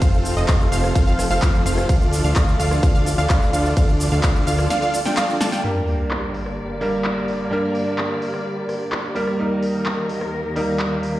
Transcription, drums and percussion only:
0.02 kick loud
0.02 ride medium
0.02 shaker soft
0.14 shaker soft
0.25 open hi-hat loud
0.25 shaker medium
0.38 shaker soft
0.48 kick loud
0.48 clap loud
0.48 ride medium
0.48 shaker soft
0.61 shaker soft
0.72 open hi-hat medium
0.72 shaker medium
0.84 cross-stick medium
0.84 shaker soft
0.95 kick loud
0.95 ride medium
0.95 shaker soft
1.08 shaker soft
1.19 cross-stick medium
1.19 open hi-hat loud
1.19 shaker medium
1.31 shaker soft
1.42 kick loud
1.42 clap loud
1.42 ride medium
1.42 shaker soft
1.55 shaker soft
1.66 open hi-hat medium
1.66 shaker medium
1.78 cross-stick medium
1.78 shaker soft
1.89 kick loud
1.89 ride medium
1.89 shaker soft
2.02 shaker soft
2.13 open hi-hat loud
2.13 shaker medium
2.25 shaker soft
2.36 kick loud
2.36 clap loud
2.36 ride medium
2.36 shaker soft
2.49 shaker soft
2.60 open hi-hat medium
2.60 shaker medium
2.71 cross-stick medium
2.71 shaker soft
2.83 kick loud
2.83 ride medium
2.83 shaker soft
2.95 shaker soft
3.06 open hi-hat loud
3.06 shaker medium
3.19 shaker soft
3.30 kick loud
3.30 clap loud
3.30 ride medium
3.30 shaker soft
3.42 shaker soft
3.53 open hi-hat medium
3.53 shaker medium
3.66 shaker soft
3.77 kick loud
3.77 ride medium
3.77 shaker soft
3.89 shaker soft
4.00 open hi-hat loud
4.00 shaker medium
4.12 shaker soft
4.23 kick loud
4.23 clap loud
4.23 ride medium
4.23 shaker soft
4.36 shaker soft
4.47 open hi-hat medium
4.47 shaker medium
4.59 cross-stick medium
4.59 shaker soft
4.70 snare medium
4.70 ride medium
4.70 shaker medium
4.83 shaker soft
4.94 open hi-hat loud
4.94 shaker medium
5.06 snare medium
5.06 shaker soft
5.17 snare medium
5.17 clap loud
5.17 ride medium
5.17 shaker soft
5.30 shaker soft
5.41 snare loud
5.41 open hi-hat medium
5.41 shaker medium
5.52 snare medium
5.52 shaker soft
5.88 open hi-hat medium
6.11 clap loud
6.34 open hi-hat medium
6.46 cross-stick medium
6.81 open hi-hat medium
7.05 clap loud
7.28 open hi-hat medium
7.75 open hi-hat loud
7.98 clap loud
8.22 open hi-hat medium
8.34 cross-stick medium
8.69 cross-stick medium
8.69 open hi-hat loud
8.92 clap loud
9.16 open hi-hat medium
9.27 cross-stick medium
9.63 open hi-hat loud
9.86 clap loud
10.09 open hi-hat medium
10.21 cross-stick medium
10.56 open hi-hat loud
10.80 clap loud
11.03 open hi-hat medium

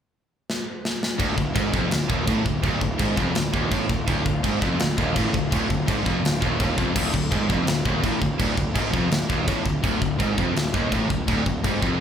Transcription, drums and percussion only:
0.50 snare medium
0.85 snare medium
1.03 snare medium
1.20 kick loud
1.20 china medium
1.38 kick medium
1.56 kick loud
1.56 china medium
1.74 kick loud
1.91 snare loud
1.91 china medium
2.10 kick loud
2.27 kick loud
2.27 china medium
2.46 kick medium
2.63 kick loud
2.63 china medium
2.81 kick medium
2.99 kick loud
2.99 china medium
3.17 kick loud
3.35 snare loud
3.35 china medium
3.54 kick loud
3.71 kick loud
3.71 china medium
3.89 kick medium
4.08 kick loud
4.08 china medium
4.26 kick loud
4.44 kick loud
4.44 china medium
4.62 kick loud
4.79 snare loud
4.79 china medium
4.98 kick loud
5.16 kick loud
5.16 china medium
5.34 kick medium
5.52 kick loud
5.52 china medium
5.70 kick medium
5.88 kick loud
5.88 china medium
6.06 kick loud
6.25 snare loud
6.25 china medium
6.42 kick loud
6.60 kick loud
6.60 china medium
6.78 kick loud
6.96 kick loud
6.96 crash loud
6.96 china medium
7.14 kick medium
7.32 kick loud
7.32 china medium
7.50 kick loud
7.67 snare loud
7.67 china medium
7.85 kick loud
8.04 kick loud
8.04 china medium
8.22 kick loud
8.39 kick loud
8.39 china medium
8.57 kick medium
8.75 kick loud
8.75 china medium
8.94 kick loud
9.12 snare loud
9.12 china medium
9.30 kick loud
9.48 kick loud
9.48 china medium
9.66 kick loud
9.84 kick loud
9.84 china medium
10.02 kick medium
10.20 kick loud
10.20 china medium
10.38 kick loud
10.56 snare loud
10.56 china medium
10.74 kick loud
10.92 kick loud
10.92 china medium
11.10 kick medium
11.28 kick loud
11.28 china medium
11.46 kick medium
11.64 kick loud
11.64 china medium
11.82 kick loud

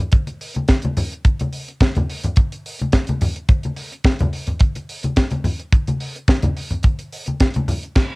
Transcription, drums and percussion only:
0.12 kick loud
0.12 closed hi-hat medium
0.12 muted conga soft
0.27 closed hi-hat soft
0.27 muted conga soft
0.41 open hi-hat medium
0.55 closed hi-hat soft
0.55 high conga medium
0.68 kick loud
0.68 snare medium
0.68 closed hi-hat medium
0.82 closed hi-hat soft
0.82 high conga medium
0.97 open hi-hat medium
0.97 low conga medium
1.12 closed hi-hat soft
1.25 kick loud
1.25 closed hi-hat medium
1.39 closed hi-hat soft
1.39 muted conga soft
1.39 high conga medium
1.53 open hi-hat medium
1.68 closed hi-hat soft
1.80 kick loud
1.80 snare loud
1.80 closed hi-hat medium
1.95 closed hi-hat soft
1.95 high conga medium
1.95 low conga medium
2.10 open hi-hat medium
2.24 closed hi-hat soft
2.24 low conga medium
2.36 kick loud
2.36 closed hi-hat medium
2.36 muted conga soft
2.52 closed hi-hat soft
2.66 open hi-hat medium
2.79 closed hi-hat soft
2.79 high conga medium
2.92 kick medium
2.92 snare medium
2.92 closed hi-hat medium
2.92 muted conga soft
3.07 closed hi-hat medium
3.07 muted conga soft
3.07 high conga medium
3.21 open hi-hat medium
3.21 low conga medium
3.36 closed hi-hat soft
3.49 kick loud
3.49 closed hi-hat medium
3.49 muted conga soft
3.63 closed hi-hat soft
3.63 high conga medium
3.76 open hi-hat medium
3.92 closed hi-hat soft
4.04 kick loud
4.04 snare loud
4.04 closed hi-hat medium
4.04 muted conga soft
4.19 closed hi-hat soft
4.19 muted conga soft
4.19 high conga medium
4.19 low conga medium
4.33 open hi-hat medium
4.47 closed hi-hat soft
4.47 low conga medium
4.59 kick loud
4.59 closed hi-hat medium
4.75 closed hi-hat soft
4.75 muted conga soft
4.89 open hi-hat medium
5.03 closed hi-hat soft
5.03 high conga medium
5.16 kick loud
5.16 snare loud
5.16 closed hi-hat medium
5.16 muted conga soft
5.30 closed hi-hat soft
5.30 high conga medium
5.44 open hi-hat medium
5.44 low conga medium
5.60 closed hi-hat soft
5.72 kick loud
5.72 closed hi-hat medium
5.87 closed hi-hat soft
5.87 muted conga soft
5.87 high conga medium
6.00 open hi-hat medium
6.16 closed hi-hat soft
6.28 kick loud
6.28 snare loud
6.28 closed hi-hat medium
6.28 muted conga soft
6.42 closed hi-hat medium
6.42 muted conga soft
6.42 high conga medium
6.42 low conga medium
6.57 open hi-hat medium
6.71 closed hi-hat soft
6.71 low conga medium
6.83 kick loud
6.83 closed hi-hat medium
6.99 closed hi-hat soft
7.12 open hi-hat medium
7.26 closed hi-hat soft
7.26 high conga medium
7.40 kick loud
7.40 snare loud
7.40 closed hi-hat medium
7.40 muted conga soft
7.54 closed hi-hat medium
7.54 muted conga soft
7.54 high conga medium
7.68 open hi-hat medium
7.68 low conga medium
7.83 closed hi-hat soft
7.95 kick loud
7.95 snare loud
7.95 crash medium

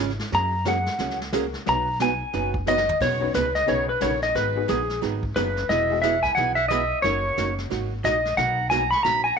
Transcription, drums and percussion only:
0.10 snare soft
0.19 snare soft
0.32 brush sweep soft
0.32 snare soft
0.65 snare medium
0.65 hi-hat pedal medium
0.86 snare soft
0.99 brush sweep medium
0.99 snare soft
1.10 snare soft
1.21 snare medium
1.33 snare medium
1.33 hi-hat pedal medium
1.54 snare soft
1.66 brush sweep soft
1.66 snare soft
2.00 snare medium
2.00 hi-hat pedal medium
2.33 brush sweep soft
2.33 snare soft
2.54 kick medium
2.67 snare medium
2.67 hi-hat pedal medium
2.78 snare medium
2.89 floor tom medium
3.01 brush sweep soft
3.01 kick medium
3.01 snare soft
3.01 crash medium
3.34 snare medium
3.34 hi-hat pedal medium
3.55 snare soft
3.68 brush sweep soft
3.68 snare soft
4.01 snare medium
4.01 hi-hat pedal medium
4.22 snare soft
4.35 brush sweep soft
4.35 snare soft
4.69 snare medium
4.69 hi-hat pedal medium
4.90 snare soft
5.02 brush sweep medium
5.02 snare soft
5.23 kick medium
5.36 snare medium
5.36 hi-hat pedal medium
5.57 snare soft
5.70 brush sweep soft
5.70 snare soft
6.03 snare medium
6.03 hi-hat pedal medium
6.24 kick medium
6.24 snare soft
6.37 brush sweep medium
6.37 snare soft
6.70 snare medium
6.70 hi-hat pedal medium
7.04 brush sweep soft
7.04 snare soft
7.38 snare medium
7.38 hi-hat pedal medium
7.58 snare soft
7.71 brush sweep soft
7.71 snare soft
8.05 snare medium
8.05 hi-hat pedal medium
8.25 snare soft
8.38 brush sweep soft
8.38 snare soft
8.71 snare medium
8.71 hi-hat pedal medium
8.92 snare soft
9.04 brush sweep soft
9.04 snare soft

